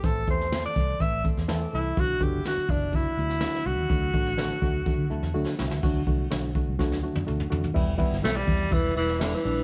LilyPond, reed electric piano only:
<<
  \new Staff \with { instrumentName = "Reed electric piano" } { \time 4/4 \key e \minor \tempo 4 = 124 r1 | r1 | r2 r8 a''8 \tuplet 3/2 { fis''4 e''8 } | r1 |
r1 | }
  \new Staff \with { instrumentName = "Reed electric piano" } { \time 4/4 \key e \minor <e a c' c''>8 <e a c' a'>8 <e a c' a'>8 <e a c' a'>8 <e a c' b'>8 <e a c' a'>8 <e a c' a'>8 <e a c' a'>8 | <d fis b fis'>8 <d fis b fis'>8 <d fis b fis'>8 <d fis b e'>8 <d fis b fis'>8 <d fis b fis'>8 <d fis b fis'>8 <d fis b fis'>8 | <d fis a fis'>8 <d fis a fis'>8 <d fis a a'>8 <d fis a fis'>8 <d fis a fis'>8 <d fis a e'>8 <d fis a fis'>8 <d fis a fis'>8 | <d fis a fis'>8 <d fis a fis'>8 <d fis a fis'>8 <d fis a fis'>8 <d fis a fis'>8 <d fis a fis'>8 <d fis a fis'>8 <d fis a fis'>8 |
<g b e'>8 <g b e'>8 <g b e'>8 <g b e'>8 <g b e'>8 <g b e'>8 <g b e'>8 <g b d'>8 | }
>>